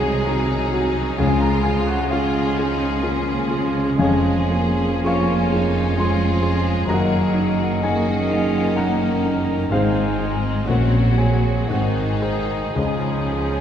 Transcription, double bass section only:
0, 0, Header, 1, 2, 480
1, 0, Start_track
1, 0, Key_signature, -5, "major"
1, 0, Tempo, 921659
1, 615, Time_signature, 3, 2, 24, 8
1, 1574, Tempo, 960000
1, 2054, Tempo, 1065719
1, 2534, Tempo, 937500
1, 3014, Tempo, 886263
1, 3494, Tempo, 949367
1, 5414, Tempo, 1025641
1, 5894, Tempo, 1084991
1, 6739, End_track
2, 0, Start_track
2, 0, Title_t, "Double bass section"
2, 0, Program_c, 0, 48
2, 0, Note_on_c, 0, 36, 51
2, 596, Note_off_c, 0, 36, 0
2, 615, Note_on_c, 0, 37, 54
2, 2034, Note_off_c, 0, 37, 0
2, 2048, Note_on_c, 0, 29, 58
2, 3469, Note_off_c, 0, 29, 0
2, 3494, Note_on_c, 0, 30, 57
2, 4907, Note_off_c, 0, 30, 0
2, 4925, Note_on_c, 0, 32, 52
2, 5403, Note_off_c, 0, 32, 0
2, 5417, Note_on_c, 0, 34, 50
2, 5888, Note_on_c, 0, 32, 47
2, 5895, Note_off_c, 0, 34, 0
2, 6366, Note_off_c, 0, 32, 0
2, 6366, Note_on_c, 0, 37, 45
2, 6739, Note_off_c, 0, 37, 0
2, 6739, End_track
0, 0, End_of_file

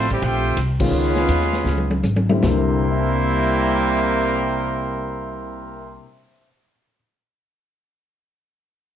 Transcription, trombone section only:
0, 0, Header, 1, 2, 480
1, 0, Start_track
1, 0, Tempo, 349040
1, 1271, Time_signature, 4, 2, 24, 8
1, 1271, Tempo, 370599
1, 2711, Tempo, 398406
1, 11048, End_track
2, 0, Start_track
2, 0, Title_t, "Trombone section"
2, 0, Program_c, 0, 61
2, 0, Note_on_c, 0, 53, 85
2, 0, Note_on_c, 0, 57, 86
2, 0, Note_on_c, 0, 60, 89
2, 138, Note_on_c, 0, 45, 76
2, 138, Note_on_c, 0, 48, 74
2, 140, Note_on_c, 0, 55, 73
2, 145, Note_off_c, 0, 57, 0
2, 148, Note_off_c, 0, 60, 0
2, 150, Note_off_c, 0, 53, 0
2, 293, Note_off_c, 0, 45, 0
2, 293, Note_off_c, 0, 48, 0
2, 295, Note_off_c, 0, 55, 0
2, 323, Note_on_c, 0, 60, 96
2, 330, Note_on_c, 0, 57, 94
2, 332, Note_on_c, 0, 67, 103
2, 793, Note_off_c, 0, 60, 0
2, 797, Note_off_c, 0, 57, 0
2, 797, Note_off_c, 0, 67, 0
2, 1122, Note_on_c, 0, 65, 101
2, 1131, Note_on_c, 0, 56, 96
2, 1133, Note_on_c, 0, 59, 94
2, 2669, Note_off_c, 0, 65, 0
2, 2674, Note_off_c, 0, 56, 0
2, 2674, Note_off_c, 0, 59, 0
2, 3182, Note_on_c, 0, 58, 119
2, 3184, Note_on_c, 0, 64, 117
2, 3185, Note_on_c, 0, 55, 109
2, 3189, Note_on_c, 0, 48, 114
2, 7449, Note_off_c, 0, 58, 0
2, 7452, Note_off_c, 0, 64, 0
2, 7453, Note_off_c, 0, 55, 0
2, 7456, Note_off_c, 0, 48, 0
2, 11048, End_track
0, 0, End_of_file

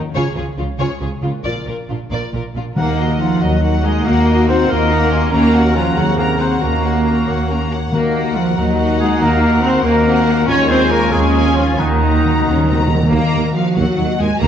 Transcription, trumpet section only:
0, 0, Header, 1, 2, 480
1, 0, Start_track
1, 0, Tempo, 436999
1, 159, Time_signature, 6, 3, 24, 8
1, 3521, Tempo, 428571
1, 11681, Tempo, 434468
1, 16083, End_track
2, 0, Start_track
2, 0, Title_t, "Trumpet section"
2, 0, Program_c, 0, 61
2, 3042, Note_on_c, 0, 70, 69
2, 3485, Note_off_c, 0, 70, 0
2, 3510, Note_on_c, 0, 65, 58
2, 3749, Note_off_c, 0, 65, 0
2, 3753, Note_on_c, 0, 66, 61
2, 4233, Note_off_c, 0, 66, 0
2, 4234, Note_on_c, 0, 68, 73
2, 4470, Note_on_c, 0, 70, 85
2, 4475, Note_off_c, 0, 68, 0
2, 4943, Note_on_c, 0, 72, 82
2, 4950, Note_off_c, 0, 70, 0
2, 5180, Note_on_c, 0, 70, 93
2, 5181, Note_off_c, 0, 72, 0
2, 5873, Note_off_c, 0, 70, 0
2, 5886, Note_on_c, 0, 70, 86
2, 6363, Note_off_c, 0, 70, 0
2, 6371, Note_on_c, 0, 65, 81
2, 6613, Note_on_c, 0, 66, 74
2, 6616, Note_off_c, 0, 65, 0
2, 6847, Note_on_c, 0, 70, 72
2, 6858, Note_off_c, 0, 66, 0
2, 7094, Note_on_c, 0, 72, 77
2, 7097, Note_off_c, 0, 70, 0
2, 7335, Note_on_c, 0, 70, 69
2, 7342, Note_off_c, 0, 72, 0
2, 8536, Note_off_c, 0, 70, 0
2, 8801, Note_on_c, 0, 70, 79
2, 9253, Note_off_c, 0, 70, 0
2, 9288, Note_on_c, 0, 65, 59
2, 9397, Note_off_c, 0, 65, 0
2, 9527, Note_on_c, 0, 66, 67
2, 10000, Note_off_c, 0, 66, 0
2, 10001, Note_on_c, 0, 68, 82
2, 10239, Note_on_c, 0, 70, 85
2, 10241, Note_off_c, 0, 68, 0
2, 10711, Note_off_c, 0, 70, 0
2, 10715, Note_on_c, 0, 72, 81
2, 10956, Note_on_c, 0, 70, 99
2, 10959, Note_off_c, 0, 72, 0
2, 11664, Note_off_c, 0, 70, 0
2, 11667, Note_on_c, 0, 73, 102
2, 11899, Note_on_c, 0, 72, 110
2, 11908, Note_off_c, 0, 73, 0
2, 12134, Note_on_c, 0, 70, 92
2, 12148, Note_off_c, 0, 72, 0
2, 12374, Note_on_c, 0, 68, 87
2, 12381, Note_off_c, 0, 70, 0
2, 12868, Note_off_c, 0, 68, 0
2, 12869, Note_on_c, 0, 65, 87
2, 13109, Note_on_c, 0, 63, 77
2, 13112, Note_off_c, 0, 65, 0
2, 14333, Note_off_c, 0, 63, 0
2, 16083, End_track
0, 0, End_of_file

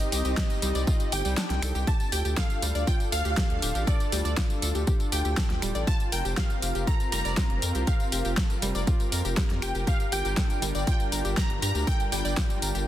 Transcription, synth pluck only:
0, 0, Header, 1, 2, 480
1, 0, Start_track
1, 0, Key_signature, -2, "minor"
1, 0, Tempo, 500000
1, 1799, Time_signature, 4, 2, 24, 8
1, 12361, End_track
2, 0, Start_track
2, 0, Title_t, "Synth pluck"
2, 0, Program_c, 0, 84
2, 0, Note_on_c, 0, 75, 100
2, 1079, Note_on_c, 0, 79, 111
2, 1144, Note_off_c, 0, 75, 0
2, 1798, Note_on_c, 0, 81, 113
2, 1821, Note_off_c, 0, 79, 0
2, 2037, Note_on_c, 0, 79, 111
2, 2046, Note_off_c, 0, 81, 0
2, 2145, Note_off_c, 0, 79, 0
2, 2277, Note_on_c, 0, 77, 111
2, 2758, Note_on_c, 0, 79, 107
2, 2773, Note_off_c, 0, 77, 0
2, 2866, Note_off_c, 0, 79, 0
2, 2998, Note_on_c, 0, 77, 105
2, 3680, Note_off_c, 0, 77, 0
2, 3717, Note_on_c, 0, 74, 99
2, 4164, Note_off_c, 0, 74, 0
2, 4920, Note_on_c, 0, 79, 95
2, 5640, Note_on_c, 0, 81, 113
2, 5661, Note_off_c, 0, 79, 0
2, 5748, Note_off_c, 0, 81, 0
2, 5879, Note_on_c, 0, 79, 98
2, 6119, Note_on_c, 0, 77, 97
2, 6126, Note_off_c, 0, 79, 0
2, 6565, Note_off_c, 0, 77, 0
2, 6600, Note_on_c, 0, 82, 112
2, 6827, Note_off_c, 0, 82, 0
2, 6839, Note_on_c, 0, 82, 112
2, 7521, Note_off_c, 0, 82, 0
2, 7558, Note_on_c, 0, 77, 91
2, 8005, Note_off_c, 0, 77, 0
2, 9241, Note_on_c, 0, 79, 100
2, 9463, Note_off_c, 0, 79, 0
2, 9482, Note_on_c, 0, 77, 109
2, 9721, Note_on_c, 0, 79, 110
2, 9728, Note_off_c, 0, 77, 0
2, 10402, Note_off_c, 0, 79, 0
2, 10441, Note_on_c, 0, 79, 106
2, 10922, Note_on_c, 0, 82, 109
2, 10935, Note_off_c, 0, 79, 0
2, 11029, Note_off_c, 0, 82, 0
2, 11162, Note_on_c, 0, 82, 101
2, 11401, Note_on_c, 0, 79, 114
2, 11408, Note_off_c, 0, 82, 0
2, 11623, Note_off_c, 0, 79, 0
2, 11641, Note_on_c, 0, 79, 116
2, 12347, Note_off_c, 0, 79, 0
2, 12361, End_track
0, 0, End_of_file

